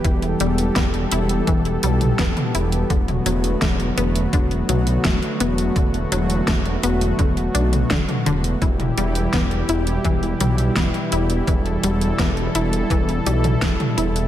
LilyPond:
<<
  \new Staff \with { instrumentName = "Analog synth pad" } { \time 4/4 \key e \minor \tempo 4 = 84 << { a'1 | fis'1~ | fis'1 | g'1 |
a'1 | } \\ { <e g b g'>1 | <d fis a>1~ | <d fis a>1 | <b, e g e'>1~ |
<b, e g e'>1 | } >> }
  \new Staff \with { instrumentName = "Synth arpeggio sound" } { \clef bass \time 4/4 \key e \minor e8 g8 b8 e'8 e8 g8 b8 e'8 | d8 fis8 a8 b8 d8 fis8 a8 b8 | d8 fis8 a8 b8 d8 d'8 d8 d16 r16 | e8 g8 b8 e'8 e8 g8 b8 e'8 |
e8 g8 b8 e'8 e8 g8 b8 e'8 | }
  \new Staff \with { instrumentName = "Detuned saw bass" } { \clef bass \time 4/4 \key e \minor e,,8 e,,8 e,,8 e,,8 e,,8 b,,8 e,,8 e,,8 | e,,8 e,,8 e,,8 e,,8 e,,8 b,,8 e,,8 e,,8 | e,,8 e,,8 e,,8 e,,8 e,,8 b,,8 e,,8 e,,8 | e,,8 e,,8 e,,8 e,,8 e,,8 b,,8 e,,8 e,,8 |
e,,8 e,,8 e,,8 e,,8 e,,8 b,,8 e,,8 e,,8 | }
  \new DrumStaff \with { instrumentName = "Drums" } \drummode { \time 4/4 <hh bd>16 hh16 hh16 hh16 <hh bd sn>16 hh16 hh16 hh16 <hh bd>16 hh16 hh16 <hh toml>16 <hh bd sn>16 <hh toml>16 hh16 hh16 | <hh bd>16 <hh toml>16 hh16 hh16 <hh bd sn>16 hh16 hh16 hh16 <hh bd>16 hh16 <hh toml>16 hh16 <hh bd sn>16 hh16 hh16 hh16 | <hh bd>16 hh16 hh16 hh16 <hh bd sn>16 hh16 hh16 hh16 <hh bd>16 hh16 hh16 <hh toml>16 <hh bd sn>16 <hh toml>16 hh16 hh16 | <hh bd>16 <hh toml>16 hh16 hh16 <hh bd sn>16 hh16 hh16 hh16 <hh bd>16 hh16 <hh toml>16 hh16 <hh bd sn>16 hh16 hh16 hh16 |
<hh bd>16 hh16 hh16 hh16 <hh bd sn>16 hh16 hh16 hh16 <hh bd>16 hh16 hh16 <hh toml>16 <hh bd sn>16 <hh toml>16 hh16 hh16 | }
>>